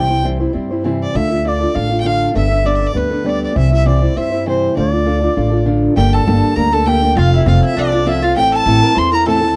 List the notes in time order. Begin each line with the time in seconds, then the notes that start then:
Already playing: C2 C3 E3 G3 C4 G5
0.10 G3 C4 E4 C5
0.23 C3 E3 G3 C4 E4 C5
0.40 G3 C4 E4 C5
0.53 G2 G3 C4 E4 C5
0.71 G3 C4 E4 C5
0.84 C3 E3 G3 C4 E4 C5
1.03 D5
1.14 D2 D3 D4 F4 A4 E5
1.30 D4 F4 A4
1.45 D3 D4 F4 A4 D5
1.61 D4 F4 A4
1.73 A1 D3 D4 F4 A4 F5
1.89 D4 F4 A4
2.01 D3 D4 G5
2.05 F4 A4 F5
2.28 F5
2.34 G1 G3 B3 D4 A4 E5
2.49 B3 D4 A4
2.64 G3 B3 D4 A4 D5
2.75 E5
2.80 B3 D4 A4
2.87 D5
2.93 D2 G3 B3 D4 A4 B4
3.10 B3 D4 A4
3.24 G3 B3 D4 A4 D5
3.29 D5
3.43 D5
3.54 C2 C3 E3 G3 C4 E4 C5 E5
3.71 G3 C4 E4 C5 E5
3.85 C3 E3 G3 C4 E4 C5 D5
4.01 G3 C4 E4 C5
4.14 G2 G3 C4 E4 C5 E5
4.32 G3 C4 E4 C5
4.46 C3 E3 G3 C4 E4 C5
4.76 D2 D3 D4 F4 A4 D5
4.91 D4 F4 A4
5.05 D3 D4 F4 A4
5.22 D4 F4 A4
5.35 A1 D3 D4 F4 A4
5.51 D4 F4 A4
5.65 D3 D4 F4 A4
5.95 G1 G2 D3 G3 A#3 D4 G4 A4 G5
6.13 A4 A5
6.27 G1 G2 D3 G3 A#3 D4 A4
6.56 D2 G3 A#3 D4 A4 A#4 A#5
6.72 G3 A#3 D4 A4 A5
6.86 G2 D3 G3 A#3 D4 G4 A4 G5
7.02 G3 A#3 D4 A4
7.15 F1 F3 C4 F4 A4 F5
7.34 E4 E5
7.45 F1 F3 C4 F4 A4 F5
7.63 E4 E5
7.76 C2 F3 C4 D4 F4 A4 D5
7.92 C4 D4 F4 A4
8.05 F3 C4 E4 F4 A4 E5 F5
8.22 C4 F4 A4 F5
8.36 A1 A2 E3 C4 E4 G4 A4 G5
8.40 G5
8.52 A4 A5
8.66 A1 A2 E3 C4 E4 A4
8.83 A#4
8.95 E2 E3 C4 E4 A4 C5 C6
9.12 C4 E4 A4 A#4 A#5
9.26 A2 E3 C4 E4 A4 A5
9.37 A4
9.41 C4 E4 A4
9.48 A4